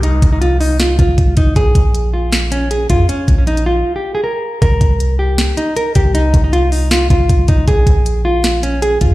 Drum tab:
HH |x-x-x-o-x-x-x-x-|x-x-x---x-x-x-x-|x-x-xx----------|x-x-x---x-x-x-x-|
SD |--------o-------|--------o-------|----------------|--------o-------|
BD |--o-------o-o-o-|o-o-----------o-|--o-------------|o-o-----------o-|

HH |x-x-x-o-x-x-x-x-|x-x-x---x-x-x-x-|
SD |--------o-------|--------o-------|
BD |--o-------o-o-o-|o-o-----------o-|